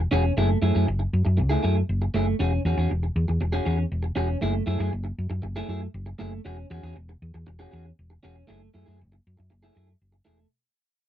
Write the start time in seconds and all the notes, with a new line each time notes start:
0.11 E1 C#4 F#4 G#4
0.24 muted clean electric guitar stroke
0.37 F#1 A3 E4 G#4
0.50 muted clean electric guitar stroke
0.62 F#2 A3 E4 G#4
0.75 F#2 A3 E4 G#4
0.87 F#1, muted clean electric guitar stroke
0.99 muted clean electric guitar stroke
1.13 F#2
1.25 F#2, muted clean electric guitar stroke
1.37 C#2, muted clean electric guitar stroke
1.49 A3 E4 G#4
1.62 F#2 A3 E4 G#4
1.76 muted clean electric guitar stroke
1.89 F#1
2.02 muted clean electric guitar stroke
2.14 F#1 A3 E4 G#4
2.26 muted clean electric guitar stroke
2.39 E1 C#4 F#4 G#4
2.52 muted clean electric guitar stroke
2.65 E2 C#4 F#4 G#4
2.77 E2 C#4 F#4 G#4
2.91 E1, muted clean electric guitar stroke
3.03 muted clean electric guitar stroke
3.16 E2
3.28 E2, muted clean electric guitar stroke
3.41 E1, muted clean electric guitar stroke
3.52 C#4 F#4 G#4
3.65 E2 C#4 F#4 G#4
3.78 muted clean electric guitar stroke
3.92 E1
4.03 muted clean electric guitar stroke
4.16 E1 C#4 F#4 G#4
4.28 muted clean electric guitar stroke
4.41 F#1 A3 E4 G#4
4.54 muted clean electric guitar stroke
4.66 F#2 A3 E4 G#4
4.79 F#2 A3 E4 G#4
4.91 F#1, muted clean electric guitar stroke
5.04 muted clean electric guitar stroke
5.18 F#2
5.30 F#2, muted clean electric guitar stroke
5.42 F#1, muted clean electric guitar stroke
5.56 A3 E4 G#4
5.68 F#2 A3 E4 G#4
5.81 muted clean electric guitar stroke
5.94 F#1
6.06 muted clean electric guitar stroke
6.19 F#1 A3 E4 G#4
6.32 muted clean electric guitar stroke
6.45 E1 C#4 F#4 G#4
6.58 muted clean electric guitar stroke
6.70 E2 C#4 F#4 G#4
6.83 E2 C#4 F#4 G#4
6.96 E1, muted clean electric guitar stroke
7.09 muted clean electric guitar stroke
7.22 E2
7.34 E2, muted clean electric guitar stroke
7.47 E1, muted clean electric guitar stroke
7.59 C#4 F#4 G#4
7.71 E2 C#4 F#4 G#4
7.85 muted clean electric guitar stroke
7.99 E1
8.10 muted clean electric guitar stroke
8.23 E1 C#4 F#4 G#4
8.36 muted clean electric guitar stroke
8.47 F#1 A3 E4 G#4
8.60 muted clean electric guitar stroke
8.74 F#2 A3 E4 G#4
8.86 F#2 A3 E4 G#4
8.99 F#1, muted clean electric guitar stroke
9.12 muted clean electric guitar stroke
9.27 F#2
9.37 F#2, muted clean electric guitar stroke
9.50 F#1, muted clean electric guitar stroke
9.63 A3 E4 G#4
9.75 F#2 A3 E4 G#4
9.88 muted clean electric guitar stroke
10.01 F#1
10.12 muted clean electric guitar stroke
10.25 E1 A3 E4 G#4
10.38 muted clean electric guitar stroke